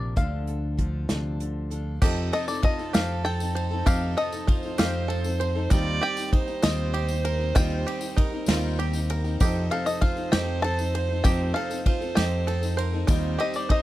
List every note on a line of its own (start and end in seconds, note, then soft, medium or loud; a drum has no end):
0.00 0.13 A#1 medium
0.00 0.17 C3 medium
0.00 0.15 F3 soft
0.00 0.78 F3 medium
0.00 0.17 A#3 soft
0.00 0.16 D4 soft
0.00 0.14 A#4 medium
0.00 0.16 A#4 medium
0.00 0.17 D5 medium
0.16 1.06 D2 loud
0.16 0.78 D3 medium
0.16 1.10 D3 medium
0.16 0.76 F3 medium
0.16 0.78 D4 medium
0.16 0.79 F4 medium
0.16 0.79 A4 medium
0.16 1.67 F5 medium
0.16 kick medium
0.16 closed hi-hat medium
0.47 1.99 A4 medium
0.47 closed hi-hat soft
0.77 1.09 F3 medium
0.77 3.87 F3 medium
0.77 1.09 D4 medium
0.77 1.08 F4 medium
0.77 1.07 A4 medium
0.77 kick medium
0.77 closed hi-hat medium
1.08 1.98 D2 medium
1.08 1.40 C3 medium
1.08 1.72 D3 medium
1.08 1.71 F3 medium
1.08 1.71 D4 medium
1.08 1.71 F4 medium
1.08 1.69 A4 medium
1.08 snare loud
1.08 closed hi-hat medium
1.40 1.71 D3 medium
1.40 closed hi-hat medium
1.70 2.02 D4 soft
1.70 2.03 F4 medium
1.70 2.02 A4 medium
1.70 closed hi-hat medium
2.02 3.83 F1 medium
2.02 2.30 F2 loud
2.02 3.83 F2 medium
2.02 2.32 F3 medium
2.02 2.66 F3 loud
2.02 2.33 C4 medium
2.02 2.67 C4 medium
2.02 2.67 D#4 medium
2.02 2.33 D#4 medium
2.02 2.32 G4 loud
2.02 4.49 A4 loud
2.02 2.67 A4 loud
2.02 2.34 A4 loud
2.02 2.67 D#5 loud
2.02 kick loud
2.02 crash loud
2.02 tambourine loud
2.33 2.48 F3 medium
2.33 2.49 C4 medium
2.33 2.48 D#4 medium
2.33 2.63 A4 medium
2.33 2.47 A4 medium
2.33 2.47 D#5 medium
2.33 ride medium
2.48 2.81 C4 soft
2.48 2.79 D#4 medium
2.48 2.77 A4 medium
2.48 2.62 D5 medium
2.48 tambourine medium
2.63 2.93 F4 medium
2.63 2.94 D#5 medium
2.63 kick medium
2.63 ride medium
2.78 2.94 C4 soft
2.78 2.94 D#4 medium
2.78 2.94 A4 medium
2.78 tambourine soft
2.93 3.83 F2 medium
2.93 3.58 F3 medium
2.93 3.23 F3 medium
2.93 3.58 C4 medium
2.93 3.25 C4 medium
2.93 3.59 D#4 medium
2.93 3.25 D#4 medium
2.93 3.24 G4 medium
2.93 3.59 A4 medium
2.93 3.26 A4 medium
2.93 3.59 C5 medium
2.93 3.24 F5 loud
2.93 snare loud
2.93 ride loud
2.93 tambourine loud
3.24 3.40 F3 medium
3.24 3.41 C4 medium
3.24 3.41 D#4 medium
3.24 3.55 A4 medium
3.24 3.39 A4 medium
3.24 3.86 G5 loud
3.24 ride medium
3.40 3.73 C4 soft
3.40 3.72 D#4 soft
3.40 3.69 A4 medium
3.40 tambourine medium
3.55 3.86 C5 medium
3.55 ride medium
3.71 3.87 C4 soft
3.71 3.87 D#4 medium
3.71 3.86 A4 medium
3.85 5.67 F1 medium
3.85 5.67 F2 medium
3.85 4.14 F2 loud
3.85 4.50 F3 medium
3.85 4.16 F3 medium
3.85 4.51 C4 medium
3.85 4.17 C4 medium
3.85 4.51 D#4 medium
3.85 4.18 D#4 medium
3.85 4.16 G4 loud
3.85 4.51 A4 medium
3.85 4.19 A4 medium
3.85 4.51 D#5 loud
3.85 4.18 F5 loud
3.85 kick loud
3.85 ride medium
3.85 tambourine loud
4.17 4.32 F3 medium
4.17 4.33 C4 medium
4.17 4.33 D#4 medium
4.17 4.47 A4 medium
4.17 4.31 A4 medium
4.17 4.75 D#5 loud
4.17 ride medium
4.32 4.65 C4 soft
4.32 4.64 D#4 soft
4.32 4.63 A4 medium
4.32 tambourine medium
4.47 4.78 F4 medium
4.47 5.73 C5 loud
4.47 kick medium
4.47 ride medium
4.63 4.79 D#4 medium
4.63 4.79 A4 medium
4.63 tambourine soft
4.67 4.79 C4 medium
4.78 5.67 F2 medium
4.78 5.43 F3 medium
4.78 5.07 F3 medium
4.78 5.43 C4 medium
4.78 5.09 C4 medium
4.78 5.44 D#4 medium
4.78 5.10 D#4 medium
4.78 5.09 G4 medium
4.78 5.44 A4 medium
4.78 5.11 A4 loud
4.78 5.44 D#5 medium
4.78 5.44 F5 medium
4.78 snare loud
4.78 ride medium
4.78 tambourine loud
5.08 5.24 F3 medium
5.08 5.25 C4 medium
5.08 5.25 D#4 medium
5.08 5.39 A4 medium
5.08 5.23 A4 medium
5.08 ride medium
5.24 5.57 C4 soft
5.24 5.55 D#4 medium
5.24 5.54 A4 medium
5.24 tambourine medium
5.40 5.70 C5 medium
5.40 ride medium
5.55 5.70 C4 medium
5.55 5.71 D#4 medium
5.55 5.71 A4 medium
5.70 7.52 D#2 medium
5.70 5.99 D#2 loud
5.70 6.01 D#3 medium
5.70 7.51 D#3 medium
5.70 6.35 G3 loud
5.70 6.00 G3 loud
5.70 6.35 C4 medium
5.70 6.01 C4 medium
5.70 6.35 D#4 loud
5.70 6.02 D#4 loud
5.70 6.01 F4 loud
5.70 6.02 G4 loud
5.70 6.36 C5 medium
5.70 6.34 D5 loud
5.70 6.36 G5 loud
5.70 kick loud
5.70 ride medium
5.70 tambourine loud
6.01 6.17 G3 medium
6.01 6.17 C4 medium
6.01 6.18 D#4 medium
6.01 6.32 G4 medium
6.01 6.16 G4 medium
6.01 6.63 G5 loud
6.01 ride medium
6.17 6.48 D#4 medium
6.17 6.46 G4 medium
6.17 tambourine loud
6.21 6.49 C4 soft
6.32 6.63 D#4 medium
6.32 8.18 C5 loud
6.32 kick medium
6.32 ride medium
6.47 6.63 C4 soft
6.47 6.63 D#4 medium
6.47 6.63 G4 medium
6.47 tambourine soft
6.63 7.52 D#2 loud
6.63 6.94 D#3 medium
6.63 6.92 G3 medium
6.63 7.28 G3 medium
6.63 7.28 C4 medium
6.63 6.94 C4 loud
6.63 7.28 D#4 medium
6.63 6.94 D#4 medium
6.63 6.93 F4 medium
6.63 6.95 G4 medium
6.63 7.28 C5 medium
6.63 7.21 D#5 medium
6.63 snare loud
6.63 ride loud
6.63 tambourine loud
6.93 7.09 G3 medium
6.93 7.10 C4 medium
6.93 7.10 D#4 medium
6.93 7.24 G4 medium
6.93 7.08 G4 medium
6.93 ride medium
7.08 7.42 C4 soft
7.08 7.40 D#4 medium
7.08 7.38 G4 medium
7.08 tambourine loud
7.25 7.55 A#4 medium
7.25 ride medium
7.39 7.55 C4 medium
7.39 7.56 D#4 medium
7.39 7.55 G4 medium
7.55 7.84 D#2 loud
7.55 9.36 D#2 medium
7.55 7.86 D#3 medium
7.55 9.36 D#3 medium
7.55 8.20 G3 medium
7.55 7.84 G3 medium
7.55 8.20 C4 medium
7.55 7.86 C4 loud
7.55 8.20 D#4 medium
7.55 7.86 D#4 medium
7.55 7.85 F4 loud
7.55 7.87 G4 medium
7.55 8.21 C5 medium
7.55 8.21 D#5 loud
7.55 8.74 G5 loud
7.55 kick loud
7.55 ride loud
7.55 tambourine loud
7.70 tambourine soft
7.85 8.01 G3 medium
7.85 8.02 C4 medium
7.85 8.02 D#4 medium
7.85 8.16 G4 medium
7.85 8.00 G4 medium
7.85 ride medium
8.01 8.34 C4 soft
8.01 8.32 D#4 medium
8.01 8.30 G4 medium
8.01 tambourine loud
8.16 8.47 D#4 medium
8.16 9.09 A#4 medium
8.16 kick medium
8.16 ride medium
8.32 8.47 C4 medium
8.32 8.48 D#4 medium
8.32 8.47 G4 medium
8.46 9.36 D#2 loud
8.46 8.78 D#3 medium
8.46 8.76 G3 medium
8.46 9.12 G3 medium
8.46 8.78 C4 loud
8.46 9.12 C4 medium
8.46 8.79 D#4 loud
8.46 9.13 D#4 medium
8.46 8.78 F4 medium
8.46 8.79 G4 loud
8.46 9.13 C5 medium
8.46 9.13 F5 medium
8.46 snare loud
8.46 ride loud
8.46 tambourine loud
8.77 8.93 G3 medium
8.77 8.94 C4 medium
8.77 8.94 D#4 medium
8.77 9.09 G4 medium
8.77 8.92 G4 medium
8.77 ride medium
8.93 9.26 C4 medium
8.93 9.25 D#4 medium
8.93 9.23 G4 medium
8.93 tambourine medium
9.10 9.40 A#4 medium
9.10 ride medium
9.24 9.40 C4 medium
9.24 9.40 D#4 medium
9.24 9.40 G4 medium
9.24 tambourine soft
9.40 11.21 F1 medium
9.40 11.21 F2 medium
9.40 9.68 F2 loud
9.40 9.69 F3 medium
9.40 10.05 F3 loud
9.40 9.70 C4 loud
9.40 10.05 C4 medium
9.40 9.71 D#4 loud
9.40 10.05 D#4 medium
9.40 9.70 G4 loud
9.40 10.05 A4 medium
9.40 9.72 A4 loud
9.40 11.82 C5 loud
9.40 10.05 D#5 loud
9.40 kick loud
9.40 ride medium
9.40 tambourine loud
9.70 9.86 F3 medium
9.70 9.86 C4 medium
9.70 9.86 D#4 medium
9.70 10.02 A4 medium
9.70 9.84 A4 medium
9.70 9.87 F5 medium
9.70 ride medium
9.85 10.18 C4 soft
9.85 10.16 D#4 medium
9.85 10.14 A4 medium
9.85 10.02 D#5 medium
9.85 tambourine medium
10.01 10.32 F4 medium
10.01 10.30 F5 loud
10.01 kick medium
10.01 ride medium
10.16 10.31 C4 soft
10.16 10.32 D#4 medium
10.16 10.32 A4 medium
10.16 tambourine soft
10.31 11.21 F2 medium
10.31 10.61 F3 medium
10.31 10.96 F3 medium
10.31 10.96 C4 medium
10.31 10.62 C4 medium
10.31 10.97 D#4 medium
10.31 10.63 D#4 medium
10.31 10.63 G4 medium
10.31 10.97 A4 medium
10.31 10.64 A4 medium
10.31 10.97 D#5 medium
10.31 10.62 G5 loud
10.31 snare loud
10.31 ride medium
10.31 tambourine loud
10.62 10.78 F3 medium
10.62 10.78 C4 medium
10.62 10.79 D#4 medium
10.62 10.94 A4 medium
10.62 10.77 A4 medium
10.62 11.20 A5 loud
10.62 ride medium
10.78 11.10 C4 soft
10.78 11.10 D#4 medium
10.78 11.07 A4 medium
10.78 tambourine medium
10.95 11.24 C5 medium
10.95 ride medium
11.09 11.23 C4 medium
11.09 11.24 D#4 medium
11.09 11.24 A4 medium
11.24 13.05 F1 medium
11.24 13.05 F2 medium
11.24 11.52 F2 loud
11.24 11.88 F3 medium
11.24 11.53 F3 medium
11.24 11.89 C4 medium
11.24 11.54 C4 medium
11.24 11.89 D#4 medium
11.24 11.56 D#4 medium
11.24 11.55 G4 loud
11.24 11.89 A4 medium
11.24 11.56 A4 loud
11.24 11.89 D#5 medium
11.24 11.54 G5 loud
11.24 kick loud
11.24 ride medium
11.24 tambourine loud
11.54 11.70 F3 medium
11.54 11.71 C4 medium
11.54 11.71 D#4 medium
11.54 11.86 A4 medium
11.54 11.68 A4 medium
11.54 12.15 F5 loud
11.54 ride medium
11.70 12.02 C4 soft
11.70 12.01 D#4 medium
11.70 11.99 A4 medium
11.70 tambourine medium
11.85 12.16 F4 medium
11.85 12.80 C5 loud
11.85 kick medium
11.85 ride medium
12.00 12.16 C4 soft
12.00 12.16 D#4 medium
12.00 12.16 A4 medium
12.00 tambourine soft
12.15 13.05 F2 medium
12.15 12.46 F3 medium
12.15 12.81 F3 medium
12.15 12.81 C4 medium
12.15 12.47 C4 medium
12.15 12.81 D#4 medium
12.15 12.48 D#4 medium
12.15 12.47 G4 medium
12.15 12.81 A4 medium
12.15 12.48 A4 medium
12.15 12.81 D#5 medium
12.15 12.81 G5 medium
12.15 snare loud
12.15 ride loud
12.15 tambourine medium
12.47 12.62 F3 medium
12.47 12.63 C4 medium
12.47 12.62 D#4 medium
12.47 12.77 A4 medium
12.47 12.60 A4 medium
12.47 ride medium
12.61 12.94 C4 soft
12.61 12.93 D#4 medium
12.61 12.91 A4 medium
12.61 tambourine medium
12.77 13.07 A#4 loud
12.77 13.08 C5 medium
12.77 ride medium
12.92 13.08 C4 medium
12.92 13.09 D#4 medium
12.92 13.08 A4 medium
13.07 13.82 D#2 medium
13.07 13.36 D#2 loud
13.07 13.39 D#3 medium
13.07 13.82 D#3 medium
13.07 13.72 G3 loud
13.07 13.37 G3 loud
13.07 13.73 C4 loud
13.07 13.38 C4 loud
13.07 13.73 D#4 medium
13.07 13.39 D#4 loud
13.07 13.38 F4 loud
13.07 13.40 G4 loud
13.07 13.82 C5 loud
13.07 13.73 C5 medium
13.07 13.73 D#5 loud
13.07 kick loud
13.07 ride medium
13.07 tambourine loud
13.38 13.54 G3 medium
13.38 13.55 C4 medium
13.38 13.54 D#4 medium
13.38 13.69 G4 medium
13.38 13.52 G4 medium
13.38 13.56 D#5 medium
13.38 ride medium
13.54 13.82 C4 soft
13.54 13.82 D#4 soft
13.54 13.82 G4 medium
13.54 13.71 D5 medium
13.54 tambourine medium
13.69 13.82 D#4 medium
13.69 13.82 D#5 medium
13.69 kick medium
13.69 ride medium